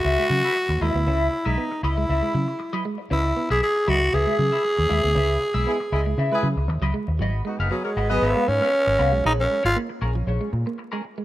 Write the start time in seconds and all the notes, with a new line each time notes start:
Already playing: F#4
0.05 C#2 E4 B4 E5, muted clean electric guitar stroke
0.19 G#3
0.30 C#3 F#3, muted clean electric guitar stroke
0.44 E4 B4 E5
0.56 muted clean electric guitar stroke
0.69 D#2, muted clean electric guitar stroke
0.81 D#2 G#3 E4 B4 E5
0.94 D2 B3, muted clean electric guitar stroke
1.06 C#2 C#4 E4 B4 E5
1.33 muted clean electric guitar stroke
1.45 B1 G#3 D#4 E4 B4 E5
1.58 B3
1.71 muted clean electric guitar stroke
1.83 C#2 E4 B4 D#5
1.97 G#3, muted clean electric guitar stroke
2.09 C#2 E4 B4 E5, muted clean electric guitar stroke
2.22 G#3
2.34 C#3 F#3, muted clean electric guitar stroke
2.48 muted clean electric guitar stroke
2.59 muted clean electric guitar stroke
2.73 F#3 E4 B4 D#5
2.84 G#3, muted clean electric guitar stroke
2.98 muted clean electric guitar stroke
3.10 C#2 C#4 E4 B4 D#5
3.25 muted clean electric guitar stroke
3.37 B3
3.50 B1 E4 G#4 B4 E5
3.63 G#4
3.76 muted clean electric guitar stroke
3.87 C#2 F#3 E4 F#4 B4 D#5
4.01 muted clean electric guitar stroke
4.13 C#2 E4 G#4 B4 E5, muted clean electric guitar stroke
4.26 G#3
4.38 C#3 F#3, muted clean electric guitar stroke
4.52 E4 B4 E5
4.64 muted clean electric guitar stroke
4.78 D#2, muted clean electric guitar stroke
4.89 D#2 G#3 E4 B4 E5
5.03 D2 B3, muted clean electric guitar stroke
5.15 C#2 C#4 E4 B4 E5
5.41 muted clean electric guitar stroke
5.54 B1 G#3 E4 B4 E5
5.67 G#3 B3 E4 G#4
5.80 muted clean electric guitar stroke
5.92 C#2 G#3 E4 G#4 B4 D#5
6.06 G#3, muted clean electric guitar stroke
6.18 C#3 E4 B4 E5, muted clean electric guitar stroke
6.32 G#3 E4 G#4 B4
6.43 C#3 F#3, muted clean electric guitar stroke
6.56 C#2, muted clean electric guitar stroke
6.68 D#2, muted clean electric guitar stroke
6.82 C#2 F#3 E4 B4 D#5
6.94 G#3, muted clean electric guitar stroke
7.08 D#2, muted clean electric guitar stroke
7.19 G#1 F#3 F#4 B4 D#5
7.45 G#3 B3 D#4 F#4, muted clean electric guitar stroke
7.58 F#1 B3 D#4 F#4 G#4 B4 F5, muted clean electric guitar stroke
7.70 F#3 B3 F#4 G#4 B4
7.84 G#3 F#4 A#4 C#5, muted clean electric guitar stroke
7.96 G#1 F#4 B4 D#5
8.09 F#3 B3 G#4 B4 D#5, muted clean electric guitar stroke
8.22 G#1 F#4 B4 F5
8.36 G#3
8.48 G#2 C#4, muted clean electric guitar stroke
8.61 B3 F#4 B4 F5
8.73 muted clean electric guitar stroke
8.87 G#1, muted clean electric guitar stroke
8.98 C2 B3 F#4 B4 F5
9.12 B1 G#3, muted clean electric guitar stroke
9.25 A#1 F3 C#4 D#4 G#4 C#5
9.40 C#4
9.50 G#3, muted clean electric guitar stroke
9.63 G#1 C#4 F4 G#4 C#5, muted clean electric guitar stroke
9.76 A#3
9.89 muted clean electric guitar stroke
10.01 A#1 C#4 G#4 A#4
10.15 F3, muted clean electric guitar stroke
10.27 A#1 C#4 G#4 C#5
10.41 G#3
10.53 A#2, muted clean electric guitar stroke
10.66 A#3, muted clean electric guitar stroke
10.78 muted clean electric guitar stroke
10.92 G#3 C#4 G#4 A#4
11.04 muted clean electric guitar stroke
11.18 G#3, muted clean electric guitar stroke